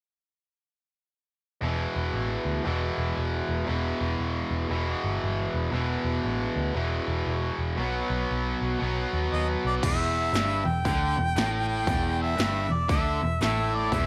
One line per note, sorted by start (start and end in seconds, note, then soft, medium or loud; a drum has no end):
1.61 1.85 E1 medium
1.61 2.63 E2 medium
1.61 2.64 B2 medium
1.61 2.66 E3 medium
1.96 2.09 E1 medium
2.14 2.37 A1 medium
2.45 2.59 D2 medium
2.63 2.89 E1 medium
2.63 3.65 E2 medium
2.63 3.66 B2 medium
2.63 3.69 E3 medium
2.98 3.11 E1 medium
3.17 3.40 E1 medium
3.49 3.62 E1 medium
3.65 3.91 E1 medium
3.65 4.68 E2 medium
3.65 4.69 B2 medium
3.69 4.72 E3 medium
4.01 4.14 E1 medium
4.19 4.42 E1 medium
4.51 4.65 E1 medium
4.69 4.93 E1 medium
4.69 5.69 E2 medium
4.69 5.71 B2 medium
4.69 5.73 E3 medium
5.04 5.17 G1 medium
5.24 5.46 G1 medium
5.54 5.68 E1 medium
5.71 5.96 E1 medium
5.71 6.72 E2 medium
5.71 6.74 B2 medium
5.71 6.75 E3 medium
6.04 6.18 E1 medium
6.24 6.47 A1 medium
6.56 6.70 D2 medium
6.73 6.98 E1 medium
6.73 7.76 E2 medium
6.73 7.76 B2 medium
6.73 7.78 E3 medium
7.08 7.22 E1 medium
7.26 7.50 E1 medium
7.58 7.77 E1 medium
7.77 8.01 B1 medium
7.77 8.78 B2 medium
7.77 8.80 F#3 medium
7.77 8.81 B3 medium
8.10 8.24 B1 medium
8.31 8.53 B1 medium
8.61 8.75 B1 medium
8.80 9.04 B1 medium
8.80 9.81 B2 medium
8.80 9.82 F#3 medium
8.80 9.83 B3 medium
9.13 9.27 D#2 medium
9.32 9.55 D#2 medium
9.32 9.47 D#5 medium
9.65 9.78 B1 medium
9.65 9.75 D5 medium
9.83 10.31 E1 medium
9.83 10.34 E2 medium
9.83 kick medium
9.83 open hi-hat soft
9.83 crash medium
9.87 10.68 E5 medium
10.33 10.63 G1 medium
10.33 10.65 G2 medium
10.33 snare loud
10.33 open hi-hat soft
10.65 10.84 E1 medium
10.65 10.81 E2 medium
10.65 11.68 G5 medium
10.85 11.15 D2 medium
10.85 11.16 D3 medium
10.85 kick medium
10.85 open hi-hat soft
11.16 11.36 E1 medium
11.16 11.32 E2 medium
11.36 11.84 A1 medium
11.36 11.87 A2 loud
11.36 snare medium
11.36 open hi-hat soft
11.68 12.24 G5 loud
11.87 12.35 E1 medium
11.87 12.37 E2 loud
11.87 kick medium
11.87 open hi-hat soft
12.22 12.74 E5 medium
12.37 12.69 G1 medium
12.37 12.68 G2 loud
12.37 snare loud
12.37 open hi-hat soft
12.69 12.88 E1 medium
12.69 12.85 E2 medium
12.69 12.89 D5 medium
12.88 13.19 D2 medium
12.88 13.20 D3 loud
12.88 13.37 E5 medium
12.88 kick loud
12.88 open hi-hat soft
13.21 13.40 E1 medium
13.21 13.37 E2 medium
13.41 13.88 A1 medium
13.41 13.92 A2 loud
13.41 13.76 E5 medium
13.41 snare medium
13.41 open hi-hat soft
13.75 13.93 D5 medium
13.91 14.07 E1 medium
13.91 14.07 E2 loud
13.91 14.07 E5 medium
13.91 kick medium
13.91 open hi-hat soft